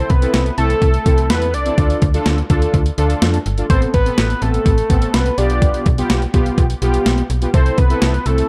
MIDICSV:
0, 0, Header, 1, 5, 480
1, 0, Start_track
1, 0, Tempo, 480000
1, 1779, Time_signature, 4, 2, 24, 8
1, 8486, End_track
2, 0, Start_track
2, 0, Title_t, "Analog synth lead"
2, 0, Program_c, 0, 81
2, 0, Note_on_c, 0, 72, 91
2, 99, Note_on_c, 0, 71, 93
2, 114, Note_off_c, 0, 72, 0
2, 573, Note_off_c, 0, 71, 0
2, 579, Note_on_c, 0, 69, 94
2, 1260, Note_off_c, 0, 69, 0
2, 1300, Note_on_c, 0, 71, 96
2, 1540, Note_on_c, 0, 74, 107
2, 1555, Note_off_c, 0, 71, 0
2, 2020, Note_off_c, 0, 74, 0
2, 3700, Note_on_c, 0, 72, 92
2, 3808, Note_off_c, 0, 72, 0
2, 3938, Note_on_c, 0, 71, 93
2, 4418, Note_on_c, 0, 69, 91
2, 4433, Note_off_c, 0, 71, 0
2, 5138, Note_on_c, 0, 71, 93
2, 5153, Note_off_c, 0, 69, 0
2, 5378, Note_on_c, 0, 74, 105
2, 5393, Note_off_c, 0, 71, 0
2, 5859, Note_off_c, 0, 74, 0
2, 7540, Note_on_c, 0, 72, 91
2, 7778, Note_on_c, 0, 71, 98
2, 7793, Note_off_c, 0, 72, 0
2, 8259, Note_on_c, 0, 69, 91
2, 8274, Note_off_c, 0, 71, 0
2, 8486, Note_off_c, 0, 69, 0
2, 8486, End_track
3, 0, Start_track
3, 0, Title_t, "Analog polysynth"
3, 0, Program_c, 1, 90
3, 219, Note_on_c, 1, 60, 74
3, 219, Note_on_c, 1, 64, 68
3, 219, Note_on_c, 1, 69, 81
3, 457, Note_off_c, 1, 60, 0
3, 457, Note_off_c, 1, 69, 0
3, 458, Note_off_c, 1, 64, 0
3, 579, Note_on_c, 1, 60, 72
3, 579, Note_on_c, 1, 64, 67
3, 579, Note_on_c, 1, 69, 80
3, 897, Note_off_c, 1, 60, 0
3, 897, Note_off_c, 1, 64, 0
3, 897, Note_off_c, 1, 69, 0
3, 1058, Note_on_c, 1, 64, 70
3, 1059, Note_on_c, 1, 60, 75
3, 1059, Note_on_c, 1, 69, 82
3, 1456, Note_off_c, 1, 60, 0
3, 1456, Note_off_c, 1, 64, 0
3, 1456, Note_off_c, 1, 69, 0
3, 1659, Note_on_c, 1, 69, 82
3, 1660, Note_on_c, 1, 60, 73
3, 1660, Note_on_c, 1, 64, 65
3, 1739, Note_off_c, 1, 60, 0
3, 1739, Note_off_c, 1, 64, 0
3, 1739, Note_off_c, 1, 69, 0
3, 1779, Note_on_c, 1, 62, 78
3, 1779, Note_on_c, 1, 65, 68
3, 1779, Note_on_c, 1, 69, 84
3, 2018, Note_off_c, 1, 62, 0
3, 2018, Note_off_c, 1, 65, 0
3, 2018, Note_off_c, 1, 69, 0
3, 2139, Note_on_c, 1, 62, 86
3, 2139, Note_on_c, 1, 65, 78
3, 2139, Note_on_c, 1, 69, 97
3, 2377, Note_off_c, 1, 62, 0
3, 2377, Note_off_c, 1, 65, 0
3, 2377, Note_off_c, 1, 69, 0
3, 2499, Note_on_c, 1, 62, 86
3, 2499, Note_on_c, 1, 65, 79
3, 2499, Note_on_c, 1, 69, 95
3, 2817, Note_off_c, 1, 62, 0
3, 2817, Note_off_c, 1, 65, 0
3, 2817, Note_off_c, 1, 69, 0
3, 2979, Note_on_c, 1, 62, 89
3, 2979, Note_on_c, 1, 65, 79
3, 2979, Note_on_c, 1, 69, 98
3, 3376, Note_off_c, 1, 62, 0
3, 3376, Note_off_c, 1, 65, 0
3, 3376, Note_off_c, 1, 69, 0
3, 3580, Note_on_c, 1, 62, 75
3, 3580, Note_on_c, 1, 65, 64
3, 3580, Note_on_c, 1, 69, 78
3, 3659, Note_off_c, 1, 62, 0
3, 3659, Note_off_c, 1, 65, 0
3, 3659, Note_off_c, 1, 69, 0
3, 3700, Note_on_c, 1, 59, 74
3, 3700, Note_on_c, 1, 60, 67
3, 3700, Note_on_c, 1, 69, 83
3, 3938, Note_off_c, 1, 59, 0
3, 3938, Note_off_c, 1, 60, 0
3, 3938, Note_off_c, 1, 69, 0
3, 4059, Note_on_c, 1, 59, 75
3, 4060, Note_on_c, 1, 60, 66
3, 4060, Note_on_c, 1, 69, 78
3, 4298, Note_off_c, 1, 59, 0
3, 4298, Note_off_c, 1, 60, 0
3, 4298, Note_off_c, 1, 69, 0
3, 4419, Note_on_c, 1, 69, 77
3, 4420, Note_on_c, 1, 59, 72
3, 4420, Note_on_c, 1, 60, 66
3, 4737, Note_off_c, 1, 59, 0
3, 4737, Note_off_c, 1, 60, 0
3, 4737, Note_off_c, 1, 69, 0
3, 4899, Note_on_c, 1, 60, 69
3, 4900, Note_on_c, 1, 59, 75
3, 4900, Note_on_c, 1, 69, 81
3, 5296, Note_off_c, 1, 60, 0
3, 5297, Note_off_c, 1, 59, 0
3, 5297, Note_off_c, 1, 69, 0
3, 5380, Note_on_c, 1, 59, 83
3, 5380, Note_on_c, 1, 65, 72
3, 5380, Note_on_c, 1, 67, 89
3, 5860, Note_off_c, 1, 59, 0
3, 5860, Note_off_c, 1, 65, 0
3, 5860, Note_off_c, 1, 67, 0
3, 5980, Note_on_c, 1, 59, 88
3, 5980, Note_on_c, 1, 65, 81
3, 5980, Note_on_c, 1, 67, 101
3, 6218, Note_off_c, 1, 59, 0
3, 6218, Note_off_c, 1, 65, 0
3, 6218, Note_off_c, 1, 67, 0
3, 6340, Note_on_c, 1, 59, 86
3, 6340, Note_on_c, 1, 65, 82
3, 6341, Note_on_c, 1, 67, 95
3, 6658, Note_off_c, 1, 59, 0
3, 6658, Note_off_c, 1, 65, 0
3, 6658, Note_off_c, 1, 67, 0
3, 6820, Note_on_c, 1, 59, 88
3, 6820, Note_on_c, 1, 65, 81
3, 6820, Note_on_c, 1, 67, 99
3, 7217, Note_off_c, 1, 59, 0
3, 7217, Note_off_c, 1, 65, 0
3, 7217, Note_off_c, 1, 67, 0
3, 7420, Note_on_c, 1, 59, 74
3, 7420, Note_on_c, 1, 65, 68
3, 7420, Note_on_c, 1, 67, 81
3, 7499, Note_off_c, 1, 59, 0
3, 7499, Note_off_c, 1, 65, 0
3, 7499, Note_off_c, 1, 67, 0
3, 7540, Note_on_c, 1, 60, 77
3, 7540, Note_on_c, 1, 64, 69
3, 7540, Note_on_c, 1, 69, 86
3, 7778, Note_off_c, 1, 60, 0
3, 7778, Note_off_c, 1, 64, 0
3, 7778, Note_off_c, 1, 69, 0
3, 7900, Note_on_c, 1, 60, 74
3, 7900, Note_on_c, 1, 64, 67
3, 7900, Note_on_c, 1, 69, 83
3, 8138, Note_off_c, 1, 60, 0
3, 8138, Note_off_c, 1, 64, 0
3, 8138, Note_off_c, 1, 69, 0
3, 8259, Note_on_c, 1, 60, 74
3, 8259, Note_on_c, 1, 64, 67
3, 8259, Note_on_c, 1, 69, 79
3, 8486, Note_off_c, 1, 60, 0
3, 8486, Note_off_c, 1, 64, 0
3, 8486, Note_off_c, 1, 69, 0
3, 8486, End_track
4, 0, Start_track
4, 0, Title_t, "FM bass"
4, 0, Program_c, 2, 39
4, 101, Note_on_c, 2, 36, 98
4, 268, Note_off_c, 2, 36, 0
4, 339, Note_on_c, 2, 36, 99
4, 507, Note_off_c, 2, 36, 0
4, 579, Note_on_c, 2, 36, 95
4, 747, Note_off_c, 2, 36, 0
4, 818, Note_on_c, 2, 36, 101
4, 986, Note_off_c, 2, 36, 0
4, 1059, Note_on_c, 2, 36, 95
4, 1300, Note_on_c, 2, 40, 93
4, 1315, Note_off_c, 2, 36, 0
4, 1540, Note_on_c, 2, 36, 88
4, 1555, Note_off_c, 2, 40, 0
4, 1708, Note_off_c, 2, 36, 0
4, 1779, Note_on_c, 2, 38, 100
4, 1947, Note_off_c, 2, 38, 0
4, 2021, Note_on_c, 2, 38, 101
4, 2189, Note_off_c, 2, 38, 0
4, 2259, Note_on_c, 2, 38, 104
4, 2427, Note_off_c, 2, 38, 0
4, 2500, Note_on_c, 2, 38, 95
4, 2668, Note_off_c, 2, 38, 0
4, 2738, Note_on_c, 2, 38, 99
4, 2906, Note_off_c, 2, 38, 0
4, 2980, Note_on_c, 2, 38, 99
4, 3148, Note_off_c, 2, 38, 0
4, 3220, Note_on_c, 2, 41, 99
4, 3388, Note_off_c, 2, 41, 0
4, 3460, Note_on_c, 2, 31, 90
4, 3628, Note_off_c, 2, 31, 0
4, 3699, Note_on_c, 2, 33, 102
4, 3867, Note_off_c, 2, 33, 0
4, 3941, Note_on_c, 2, 33, 98
4, 4109, Note_off_c, 2, 33, 0
4, 4180, Note_on_c, 2, 33, 101
4, 4348, Note_off_c, 2, 33, 0
4, 4420, Note_on_c, 2, 33, 102
4, 4588, Note_off_c, 2, 33, 0
4, 4658, Note_on_c, 2, 33, 100
4, 4827, Note_off_c, 2, 33, 0
4, 4899, Note_on_c, 2, 33, 92
4, 5067, Note_off_c, 2, 33, 0
4, 5140, Note_on_c, 2, 36, 95
4, 5308, Note_off_c, 2, 36, 0
4, 5380, Note_on_c, 2, 35, 91
4, 5716, Note_off_c, 2, 35, 0
4, 5861, Note_on_c, 2, 35, 107
4, 6029, Note_off_c, 2, 35, 0
4, 6099, Note_on_c, 2, 35, 97
4, 6267, Note_off_c, 2, 35, 0
4, 6340, Note_on_c, 2, 35, 98
4, 6508, Note_off_c, 2, 35, 0
4, 6578, Note_on_c, 2, 35, 98
4, 6746, Note_off_c, 2, 35, 0
4, 6819, Note_on_c, 2, 35, 93
4, 6987, Note_off_c, 2, 35, 0
4, 7059, Note_on_c, 2, 35, 92
4, 7227, Note_off_c, 2, 35, 0
4, 7299, Note_on_c, 2, 35, 84
4, 7467, Note_off_c, 2, 35, 0
4, 7539, Note_on_c, 2, 36, 105
4, 7707, Note_off_c, 2, 36, 0
4, 7781, Note_on_c, 2, 36, 97
4, 7949, Note_off_c, 2, 36, 0
4, 8019, Note_on_c, 2, 36, 97
4, 8187, Note_off_c, 2, 36, 0
4, 8259, Note_on_c, 2, 36, 95
4, 8427, Note_off_c, 2, 36, 0
4, 8486, End_track
5, 0, Start_track
5, 0, Title_t, "Drums"
5, 97, Note_on_c, 9, 42, 60
5, 101, Note_on_c, 9, 36, 94
5, 197, Note_off_c, 9, 42, 0
5, 201, Note_off_c, 9, 36, 0
5, 222, Note_on_c, 9, 42, 59
5, 322, Note_off_c, 9, 42, 0
5, 338, Note_on_c, 9, 38, 103
5, 338, Note_on_c, 9, 42, 69
5, 438, Note_off_c, 9, 38, 0
5, 438, Note_off_c, 9, 42, 0
5, 461, Note_on_c, 9, 42, 44
5, 561, Note_off_c, 9, 42, 0
5, 578, Note_on_c, 9, 42, 66
5, 678, Note_off_c, 9, 42, 0
5, 700, Note_on_c, 9, 42, 51
5, 800, Note_off_c, 9, 42, 0
5, 818, Note_on_c, 9, 36, 85
5, 818, Note_on_c, 9, 42, 62
5, 918, Note_off_c, 9, 36, 0
5, 918, Note_off_c, 9, 42, 0
5, 938, Note_on_c, 9, 42, 52
5, 1038, Note_off_c, 9, 42, 0
5, 1059, Note_on_c, 9, 36, 86
5, 1059, Note_on_c, 9, 42, 80
5, 1159, Note_off_c, 9, 36, 0
5, 1159, Note_off_c, 9, 42, 0
5, 1178, Note_on_c, 9, 42, 55
5, 1278, Note_off_c, 9, 42, 0
5, 1300, Note_on_c, 9, 38, 113
5, 1300, Note_on_c, 9, 42, 81
5, 1400, Note_off_c, 9, 38, 0
5, 1400, Note_off_c, 9, 42, 0
5, 1418, Note_on_c, 9, 42, 53
5, 1518, Note_off_c, 9, 42, 0
5, 1539, Note_on_c, 9, 42, 75
5, 1639, Note_off_c, 9, 42, 0
5, 1657, Note_on_c, 9, 42, 53
5, 1757, Note_off_c, 9, 42, 0
5, 1779, Note_on_c, 9, 36, 107
5, 1779, Note_on_c, 9, 42, 68
5, 1879, Note_off_c, 9, 36, 0
5, 1879, Note_off_c, 9, 42, 0
5, 1900, Note_on_c, 9, 42, 48
5, 2000, Note_off_c, 9, 42, 0
5, 2017, Note_on_c, 9, 42, 61
5, 2021, Note_on_c, 9, 36, 98
5, 2117, Note_off_c, 9, 42, 0
5, 2121, Note_off_c, 9, 36, 0
5, 2142, Note_on_c, 9, 42, 57
5, 2242, Note_off_c, 9, 42, 0
5, 2258, Note_on_c, 9, 38, 104
5, 2259, Note_on_c, 9, 42, 69
5, 2358, Note_off_c, 9, 38, 0
5, 2359, Note_off_c, 9, 42, 0
5, 2380, Note_on_c, 9, 42, 43
5, 2480, Note_off_c, 9, 42, 0
5, 2498, Note_on_c, 9, 42, 69
5, 2500, Note_on_c, 9, 36, 84
5, 2598, Note_off_c, 9, 42, 0
5, 2600, Note_off_c, 9, 36, 0
5, 2620, Note_on_c, 9, 42, 52
5, 2720, Note_off_c, 9, 42, 0
5, 2738, Note_on_c, 9, 36, 82
5, 2738, Note_on_c, 9, 42, 63
5, 2838, Note_off_c, 9, 36, 0
5, 2838, Note_off_c, 9, 42, 0
5, 2858, Note_on_c, 9, 42, 52
5, 2958, Note_off_c, 9, 42, 0
5, 2979, Note_on_c, 9, 42, 82
5, 3079, Note_off_c, 9, 42, 0
5, 3098, Note_on_c, 9, 42, 56
5, 3198, Note_off_c, 9, 42, 0
5, 3220, Note_on_c, 9, 38, 114
5, 3220, Note_on_c, 9, 42, 76
5, 3320, Note_off_c, 9, 38, 0
5, 3320, Note_off_c, 9, 42, 0
5, 3337, Note_on_c, 9, 42, 54
5, 3437, Note_off_c, 9, 42, 0
5, 3459, Note_on_c, 9, 42, 72
5, 3559, Note_off_c, 9, 42, 0
5, 3577, Note_on_c, 9, 42, 53
5, 3677, Note_off_c, 9, 42, 0
5, 3699, Note_on_c, 9, 36, 104
5, 3699, Note_on_c, 9, 42, 70
5, 3799, Note_off_c, 9, 36, 0
5, 3799, Note_off_c, 9, 42, 0
5, 3820, Note_on_c, 9, 42, 48
5, 3920, Note_off_c, 9, 42, 0
5, 3938, Note_on_c, 9, 42, 59
5, 3941, Note_on_c, 9, 36, 93
5, 4038, Note_off_c, 9, 42, 0
5, 4041, Note_off_c, 9, 36, 0
5, 4062, Note_on_c, 9, 42, 59
5, 4162, Note_off_c, 9, 42, 0
5, 4178, Note_on_c, 9, 38, 109
5, 4179, Note_on_c, 9, 42, 69
5, 4278, Note_off_c, 9, 38, 0
5, 4279, Note_off_c, 9, 42, 0
5, 4301, Note_on_c, 9, 42, 44
5, 4401, Note_off_c, 9, 42, 0
5, 4418, Note_on_c, 9, 42, 69
5, 4518, Note_off_c, 9, 42, 0
5, 4540, Note_on_c, 9, 42, 51
5, 4640, Note_off_c, 9, 42, 0
5, 4658, Note_on_c, 9, 36, 88
5, 4658, Note_on_c, 9, 42, 63
5, 4758, Note_off_c, 9, 36, 0
5, 4758, Note_off_c, 9, 42, 0
5, 4778, Note_on_c, 9, 42, 53
5, 4878, Note_off_c, 9, 42, 0
5, 4899, Note_on_c, 9, 36, 85
5, 4899, Note_on_c, 9, 42, 85
5, 4999, Note_off_c, 9, 36, 0
5, 4999, Note_off_c, 9, 42, 0
5, 5018, Note_on_c, 9, 42, 58
5, 5118, Note_off_c, 9, 42, 0
5, 5140, Note_on_c, 9, 38, 114
5, 5140, Note_on_c, 9, 42, 80
5, 5240, Note_off_c, 9, 38, 0
5, 5240, Note_off_c, 9, 42, 0
5, 5258, Note_on_c, 9, 42, 53
5, 5358, Note_off_c, 9, 42, 0
5, 5379, Note_on_c, 9, 42, 77
5, 5479, Note_off_c, 9, 42, 0
5, 5498, Note_on_c, 9, 42, 55
5, 5597, Note_off_c, 9, 42, 0
5, 5619, Note_on_c, 9, 36, 102
5, 5620, Note_on_c, 9, 42, 70
5, 5719, Note_off_c, 9, 36, 0
5, 5720, Note_off_c, 9, 42, 0
5, 5740, Note_on_c, 9, 42, 49
5, 5840, Note_off_c, 9, 42, 0
5, 5858, Note_on_c, 9, 42, 59
5, 5861, Note_on_c, 9, 36, 97
5, 5958, Note_off_c, 9, 42, 0
5, 5961, Note_off_c, 9, 36, 0
5, 5982, Note_on_c, 9, 42, 60
5, 6082, Note_off_c, 9, 42, 0
5, 6098, Note_on_c, 9, 38, 108
5, 6099, Note_on_c, 9, 42, 69
5, 6198, Note_off_c, 9, 38, 0
5, 6199, Note_off_c, 9, 42, 0
5, 6221, Note_on_c, 9, 42, 45
5, 6321, Note_off_c, 9, 42, 0
5, 6338, Note_on_c, 9, 42, 68
5, 6340, Note_on_c, 9, 36, 86
5, 6438, Note_off_c, 9, 42, 0
5, 6440, Note_off_c, 9, 36, 0
5, 6460, Note_on_c, 9, 42, 52
5, 6560, Note_off_c, 9, 42, 0
5, 6578, Note_on_c, 9, 36, 83
5, 6578, Note_on_c, 9, 42, 65
5, 6678, Note_off_c, 9, 36, 0
5, 6678, Note_off_c, 9, 42, 0
5, 6699, Note_on_c, 9, 42, 52
5, 6799, Note_off_c, 9, 42, 0
5, 6819, Note_on_c, 9, 42, 81
5, 6919, Note_off_c, 9, 42, 0
5, 6938, Note_on_c, 9, 42, 55
5, 7038, Note_off_c, 9, 42, 0
5, 7060, Note_on_c, 9, 38, 113
5, 7060, Note_on_c, 9, 42, 82
5, 7160, Note_off_c, 9, 38, 0
5, 7160, Note_off_c, 9, 42, 0
5, 7178, Note_on_c, 9, 42, 53
5, 7278, Note_off_c, 9, 42, 0
5, 7299, Note_on_c, 9, 42, 74
5, 7399, Note_off_c, 9, 42, 0
5, 7417, Note_on_c, 9, 42, 55
5, 7517, Note_off_c, 9, 42, 0
5, 7539, Note_on_c, 9, 36, 102
5, 7540, Note_on_c, 9, 42, 67
5, 7639, Note_off_c, 9, 36, 0
5, 7640, Note_off_c, 9, 42, 0
5, 7660, Note_on_c, 9, 42, 47
5, 7760, Note_off_c, 9, 42, 0
5, 7778, Note_on_c, 9, 42, 61
5, 7781, Note_on_c, 9, 36, 97
5, 7878, Note_off_c, 9, 42, 0
5, 7881, Note_off_c, 9, 36, 0
5, 7902, Note_on_c, 9, 42, 59
5, 8002, Note_off_c, 9, 42, 0
5, 8018, Note_on_c, 9, 38, 107
5, 8019, Note_on_c, 9, 42, 71
5, 8118, Note_off_c, 9, 38, 0
5, 8119, Note_off_c, 9, 42, 0
5, 8141, Note_on_c, 9, 42, 43
5, 8241, Note_off_c, 9, 42, 0
5, 8258, Note_on_c, 9, 42, 71
5, 8358, Note_off_c, 9, 42, 0
5, 8380, Note_on_c, 9, 42, 52
5, 8480, Note_off_c, 9, 42, 0
5, 8486, End_track
0, 0, End_of_file